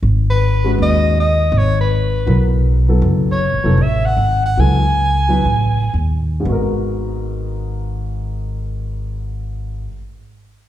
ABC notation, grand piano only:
X:1
M:4/4
L:1/8
Q:"Swing" 1/4=145
K:G#m
V:1 name="Grand piano"
z3 [G,CFB]3 z2 | z4 [F,B,EA]3 [F,B,E=A]- | [F,B,E=A]2 z [F,B,EA] z4 | [F,B,E=A] z2 [F,B,EB] z4 |
[G,,G,B,FA]8- | [G,,G,B,FA]8 |]